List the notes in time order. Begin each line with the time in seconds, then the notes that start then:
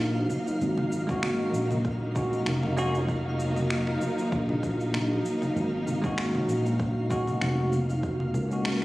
Already playing: A#1 D#3 F#3 A#3 D#4 F4 F5
0.00 D#4, djembe bass
0.16 F#4, djembe tone
0.30 A#3, low conga, cabasa
0.46 D#4, djembe slap, djembe bass, cabasa
0.61 G#1 F#4, djembe tone, cabasa
0.78 A#3, low conga
0.92 D#4, cabasa
1.07 G#3 C#4 F#4, kick, djembe slap, cabasa
1.23 A#3, finger snap, low conga, cabasa
1.39 D#4, djembe slap, djembe tone
1.54 A#1 F#4, cabasa
1.71 A#3, djembe slap, djembe tone, low conga, cabasa
1.85 kick, cabasa
2.02 D#4
2.15 G#3 C#4 F#4, kick, low conga, cabasa
2.33 A#3, cabasa
2.46 F1 D#4, finger snap, djembe bass, cabasa
2.63 F#4, djembe tone, low conga
2.77 G#3 A#3 C#4 F#4, cabasa
2.95 D#4, djembe slap, djembe bass, cabasa
3.08 F#4, kick, low conga, cabasa
3.26 A#3
3.40 D#4, djembe tone, cabasa
3.56 F#4, low conga, cabasa
3.70 A#3, finger snap, cabasa
3.87 D#4, finger snap, djembe slap, djembe tone
4.01 F#4, djembe tone, low conga, cabasa
4.18 A#3, djembe slap, cabasa
4.32 A#1, kick, cabasa
4.49 D#4, djembe slap, djembe tone, low conga
4.63 F#4, kick, cabasa
4.80 A#3, cabasa
4.94 D#4, finger snap, djembe bass, low conga, cabasa
5.11 F#4, djembe tone
5.25 A#3, cabasa
5.42 D#4, djembe slap, low conga, djembe bass, cabasa
5.56 G#1 F#4, djembe tone, cabasa
5.73 A#3
5.86 D#4, low conga, cabasa
6.02 G#3 C#4, kick, djembe slap, cabasa
6.06 F#4
6.18 A#3, finger snap, cabasa
6.35 D#4, djembe slap, djembe tone, low conga
6.48 A#1 F#4, cabasa
6.65 A#3, djembe slap, djembe tone, cabasa
6.79 A#3, kick, low conga, cabasa
6.96 D#4, djembe slap, djembe tone
7.10 G#3 C#4 F#4, kick, cabasa
7.27 A#3, low conga, cabasa
7.41 F1 D#4, finger snap, djembe bass, cabasa
7.58 F#4, djembe tone
7.72 A#3, low conga, cabasa
7.89 D#4, djembe slap, djembe bass, cabasa
8.03 F#4, kick, cabasa
8.20 A#3, low conga
8.34 C#2 A#4, kick, djembe tone, cabasa
8.49 G#3 A#3 C#4, cabasa
8.53 F#4
8.65 A#3, finger snap, low conga, cabasa
8.81 djembe slap